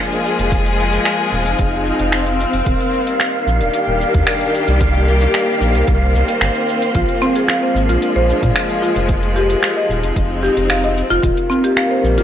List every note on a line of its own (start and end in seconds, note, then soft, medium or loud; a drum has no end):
0.00 2.66 F3 medium
0.00 2.66 G#3 medium
0.00 1.38 A#3 medium
0.00 0.52 D4 medium
0.00 2.67 G#4 medium
0.00 12.23 F5 medium
0.12 closed hi-hat soft
0.26 cabasa medium
0.39 0.98 F1 loud
0.39 closed hi-hat soft
0.39 cabasa soft
0.52 kick loud
0.52 closed hi-hat medium
0.52 cabasa soft
0.66 closed hi-hat soft
0.80 cabasa medium
0.93 closed hi-hat soft
0.93 cabasa soft
1.05 finger snap loud
1.05 closed hi-hat medium
1.05 cabasa soft
1.25 3.52 C4 medium
1.32 1.48 D#1 medium
1.32 cabasa medium
1.46 1.54 F1 medium
1.46 2.66 D#4 medium
1.46 closed hi-hat soft
1.46 cabasa soft
1.59 1.92 F1 medium
1.59 kick loud
1.59 closed hi-hat soft
1.59 cabasa soft
1.86 cabasa medium
1.99 2.45 F1 medium
1.99 closed hi-hat soft
1.99 cabasa soft
2.12 finger snap loud
2.12 closed hi-hat soft
2.12 cabasa soft
2.26 closed hi-hat soft
2.40 cabasa medium
2.53 2.62 F1 medium
2.53 closed hi-hat soft
2.53 cabasa soft
2.66 2.75 D#1 medium
2.66 6.95 D#3 medium
2.66 kick loud
2.66 closed hi-hat soft
2.66 cabasa soft
2.79 9.95 A#3 medium
2.79 closed hi-hat soft
2.87 6.95 G3 medium
2.94 cabasa medium
3.07 closed hi-hat soft
3.07 cabasa soft
3.20 finger snap medium
3.20 closed hi-hat soft
3.20 cabasa soft
3.47 3.62 A#1 medium
3.47 cabasa medium
3.61 3.69 D#1 medium
3.61 5.66 D4 medium
3.61 6.95 G4 medium
3.61 closed hi-hat soft
3.61 cabasa soft
3.74 closed hi-hat soft
3.74 cabasa soft
3.88 4.04 D#1 medium
4.01 cabasa medium
4.14 4.23 D#2 loud
4.14 kick loud
4.14 closed hi-hat soft
4.14 cabasa soft
4.27 finger snap loud
4.27 closed hi-hat soft
4.27 cabasa soft
4.41 closed hi-hat soft
4.55 cabasa medium
4.68 5.27 C2 loud
4.68 closed hi-hat soft
4.68 cabasa soft
4.81 kick loud
4.81 closed hi-hat soft
4.81 cabasa soft
4.95 closed hi-hat soft
5.08 cabasa medium
5.21 closed hi-hat soft
5.21 cabasa soft
5.34 7.81 C4 medium
5.34 finger snap medium
5.34 closed hi-hat medium
5.34 cabasa soft
5.61 5.76 A#1 medium
5.61 cabasa medium
5.75 5.83 C2 medium
5.75 closed hi-hat soft
5.75 cabasa soft
5.88 6.14 C2 medium
5.88 kick loud
5.88 closed hi-hat soft
5.88 cabasa soft
6.14 6.23 C2 medium
6.14 cabasa medium
6.28 closed hi-hat soft
6.28 cabasa soft
6.41 6.50 G1 medium
6.41 finger snap medium
6.41 closed hi-hat soft
6.41 cabasa soft
6.55 closed hi-hat soft
6.69 cabasa medium
6.82 closed hi-hat soft
6.82 cabasa soft
6.95 7.04 A#1 loud
6.95 11.24 F3 medium
6.95 7.21 F4 medium
6.95 kick loud
6.95 closed hi-hat medium
6.95 cabasa soft
7.09 closed hi-hat soft
7.19 11.24 G#3 medium
7.19 7.34 C4 loud
7.19 cabasa medium
7.35 7.47 G#4 medium
7.35 closed hi-hat soft
7.35 cabasa soft
7.48 7.62 F5 medium
7.48 finger snap medium
7.48 closed hi-hat medium
7.48 cabasa soft
7.63 7.88 C5 medium
7.75 7.91 G#1 medium
7.75 cabasa medium
7.89 7.97 A#1 medium
7.89 9.09 D4 medium
7.89 8.15 F4 medium
7.89 closed hi-hat soft
7.89 cabasa soft
8.02 closed hi-hat soft
8.02 cabasa soft
8.16 8.32 A#1 medium
8.16 8.28 C5 medium
8.30 cabasa medium
8.43 8.51 A#2 loud
8.43 kick medium
8.43 closed hi-hat soft
8.43 cabasa soft
8.56 finger snap medium
8.56 closed hi-hat soft
8.56 cabasa soft
8.70 closed hi-hat soft
8.82 8.90 F4 medium
8.82 cabasa medium
8.96 9.55 F1 loud
8.96 closed hi-hat soft
8.96 cabasa soft
9.09 kick loud
9.09 closed hi-hat medium
9.09 cabasa soft
9.23 closed hi-hat soft
9.36 9.44 G4 medium
9.36 cabasa medium
9.50 closed hi-hat soft
9.50 cabasa soft
9.63 finger snap medium
9.63 closed hi-hat medium
9.63 cabasa soft
9.77 9.89 D#5 medium
9.90 10.05 D#1 medium
9.90 11.24 D#4 medium
9.90 cabasa medium
10.00 10.12 F1 medium
10.00 12.05 C4 medium
10.00 closed hi-hat soft
10.04 cabasa soft
10.16 10.49 F1 loud
10.16 kick loud
10.16 closed hi-hat medium
10.16 cabasa soft
10.43 10.51 G4 medium
10.43 cabasa medium
10.57 11.02 F1 medium
10.57 closed hi-hat soft
10.57 cabasa soft
10.70 10.83 F5 medium
10.70 finger snap medium
10.70 closed hi-hat medium
10.70 cabasa soft
10.84 10.96 D#5 medium
10.84 closed hi-hat soft
10.97 cabasa medium
11.10 11.19 F1 medium
11.10 11.22 F4 loud
11.10 closed hi-hat soft
11.10 cabasa soft
11.23 11.32 D#1 loud
11.23 12.23 D#3 medium
11.23 11.49 F4 medium
11.23 kick loud
11.23 closed hi-hat medium
11.23 cabasa soft
11.37 12.23 A#3 medium
11.37 closed hi-hat soft
11.50 11.63 C4 medium
11.50 cabasa medium
11.64 11.76 G4 medium
11.64 closed hi-hat soft
11.64 cabasa soft
11.74 12.23 G3 medium
11.74 11.90 F5 medium
11.74 finger snap medium
11.74 closed hi-hat medium
11.78 cabasa soft
11.91 12.16 C5 medium
12.04 12.20 A#1 medium
12.04 cabasa medium
12.18 12.23 D#1 medium
12.18 12.23 D4 medium
12.18 12.23 F4 medium
12.18 12.23 G4 medium
12.18 closed hi-hat soft
12.18 cabasa soft